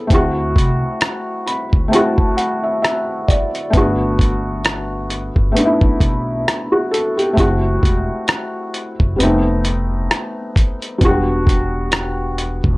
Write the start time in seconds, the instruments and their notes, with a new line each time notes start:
Already playing: felt piano B3 C4 E4 G#4 A4
0.07 upright bass D2, felt piano A3 C4, kick, closed hi-hat
0.12 felt piano E4 F#4
0.56 upright bass C2, kick, closed hi-hat
1.01 cross-stick, closed hi-hat
1.46 felt piano B5, closed hi-hat
1.73 upright bass D2, kick
1.88 felt piano A3 C4 A5
1.93 felt piano E4 F#4, closed hi-hat
2.18 kick
2.37 felt piano F#5, closed hi-hat
2.63 felt piano E5
2.82 felt piano E5, cross-stick, closed hi-hat
3.28 felt piano D5, kick, closed hi-hat
3.55 closed hi-hat
3.70 upright bass G1, felt piano A3 B3, kick, closed hi-hat
3.75 felt piano D4 F#4
4.19 kick, closed hi-hat
4.65 cross-stick, closed hi-hat
5.10 closed hi-hat
5.36 upright bass G1, kick
5.52 felt piano A3 B3
5.57 felt piano D4 D#4, closed hi-hat
5.65 felt piano E4
5.81 muted upright bass stroke, kick
6.00 upright bass B1, kick, closed hi-hat
6.48 cross-stick, closed hi-hat
6.72 felt piano F#4
6.91 felt piano A4, closed hi-hat
7.17 felt piano G4, closed hi-hat
7.33 felt piano A3 C4
7.38 upright bass F#1, felt piano E4 F#4, kick, closed hi-hat
7.83 upright bass E1, kick, closed hi-hat
8.28 cross-stick, closed hi-hat
8.74 closed hi-hat
9.00 upright bass F#1, kick
9.16 felt piano G3 B3
9.20 upright bass F1, felt piano A3 C4 D#4, closed hi-hat
9.65 closed hi-hat
10.11 cross-stick, closed hi-hat
10.56 kick, closed hi-hat
10.82 closed hi-hat
10.98 upright bass E1, felt piano F#3 B3, kick, closed hi-hat
11.03 felt piano G3 D4 F#4
11.47 kick, closed hi-hat
11.92 cross-stick, closed hi-hat
12.38 closed hi-hat
12.64 upright bass E1, kick